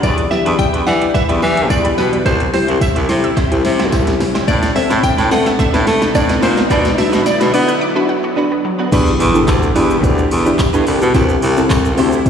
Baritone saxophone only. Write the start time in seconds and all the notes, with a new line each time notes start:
0.03 E2
0.46 E2
0.74 E2
0.87 E3
1.29 E2
1.42 E3
1.70 E2
1.98 B2
2.26 C2
2.68 C2
2.96 C2
3.09 C3
3.52 C2
3.65 C3
3.92 C2
4.48 A2
4.90 A2
5.18 A2
5.31 A3
5.74 A2
5.87 A3
6.15 A2
6.42 A#2
6.70 B2
7.13 B2
7.41 B2
7.54 B3
8.92 E2
9.20 E2
9.48 D2
9.76 E2
10.04 D2
10.31 E2
10.74 G2
10.87 C2
11.02 B2
11.14 C2
11.42 C2
11.70 C2
11.98 D2
12.26 C2